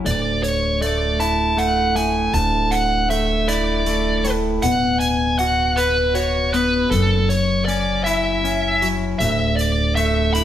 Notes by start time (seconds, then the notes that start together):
0.05 D1 D2 D5, closed hi-hat
0.43 C#5, closed hi-hat
0.81 A3 D5, closed hi-hat
1.20 E4 A5, closed hi-hat
1.57 A3 F#5, closed hi-hat
1.95 A2 G#5, closed hi-hat
2.34 D1 D2 A5, closed hi-hat
2.71 F#5, closed hi-hat
3.10 A3 E5, closed hi-hat
3.48 E4 D5, closed hi-hat
3.86 A3, closed hi-hat
4.25 A2, closed hi-hat
4.62 D1 B2 F#5, closed hi-hat
5.00 G#5, closed hi-hat
5.39 F#4 F#5, closed hi-hat
5.77 B4, closed hi-hat
6.15 F#4 C#5, closed hi-hat
6.53 B3 B4, closed hi-hat
6.91 F#1 F#2 A4, closed hi-hat
7.29 C#5, closed hi-hat
7.65 C#4 D5, closed hi-hat
8.04 E4 E5, closed hi-hat
8.44 C#4, closed hi-hat
8.82 F#3, closed hi-hat
9.19 D1 D2 E5, closed hi-hat
9.57 D5, closed hi-hat
9.95 A3 E5, closed hi-hat
10.34 E4 B5, closed hi-hat